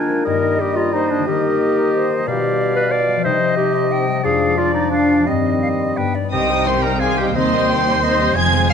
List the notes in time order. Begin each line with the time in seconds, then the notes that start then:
Already playing: D#3 A#3 D4 F4 G#4 A#4 F5 G#5 A#5
0.01 F4
0.09 G#3
0.18 D#4
0.25 G2 G3 A#3 D#4 A#4 D#5
0.35 G3
0.43 D#4
0.52 A#4
0.60 A#3 D#4 G4
0.68 D#5
0.76 F4 A#5
0.85 G4
0.93 A#3 D#4 A#4 C5
1.02 D#4
1.10 G3 D4
1.19 D#3
1.27 D#3 A#3 D#4 G4 A#4
1.36 D#4
1.45 A#4
1.53 G4
1.61 D#5
1.69 A#5
1.77 G5
1.85 D#5
1.94 G4 C5
2.02 A#4
2.10 D#4
2.19 G3
2.26 B2 G3 F4 G4 D5 F5
2.35 G3
2.43 F4
2.52 D5
2.59 G4
2.68 F5
2.76 B4 D6
2.84 G4
2.92 D5
3.00 F4
3.08 G3
3.16 F3
3.24 C3 G3 D#4 C5 D#5
3.33 C4
3.42 D#4
3.57 D#4 G4
3.66 D#5
3.75 C6
3.83 C5
3.91 D#4 G5
4.00 C4
4.08 G3
4.16 C4
4.24 F2 F3 D4 G#4 D5 F5
4.33 G#3
4.42 D4
4.50 D5
4.58 F3 D4 F4 G#4 D5
4.67 D5
4.74 D#4 D6
4.85 G#4
4.91 F3 D4 D5 F5
5.02 D4
5.11 G#3
5.19 F3
5.26 G2 D#3 G3 C4 D#5
5.37 G3
5.46 D#4
5.54 C5
5.62 G4 F5
5.72 D#5
5.80 D#5 C6
5.89 G4
5.97 G2 D3 B3 B4 G5
6.06 G3
6.15 D4 D5
6.24 B4
6.31 C2 C3 D#3 G3 C4 G4 D#5 G5 D#6
6.41 G3
6.50 G3 C4 D#4 C5
6.66 D#3 G3 C4 G4 C5 C6
6.76 C5
6.82 G3 D#4 A#4 C5 A#5 C6
7.00 D#3 C4 G4 G#4 F5 G#5 C6
7.10 C5
7.17 G3 D#4 G4 C5 G5
7.27 C5
7.35 D#2 D#3 G3 C4 D#4 C5 D#5 C6
7.45 G3
7.53 G3 C4 D#4 G4 D#5
7.62 C5
7.70 D#3 C4 D#4 G4 C5 G5
7.78 C5
7.86 G3 D#4 G4 D#5 C6
7.95 G5
8.02 D#3 C4 D#4 C5 D#5
8.12 C5
8.20 G3 D#4 G4 D#5
8.28 C5
8.35 F1 F2 F3 C4 G#4 C5 G#5 G#6
8.45 G#3
8.53 G#3 C4 F4 G#4
8.62 C5
8.69 C4 F5 G#5 F6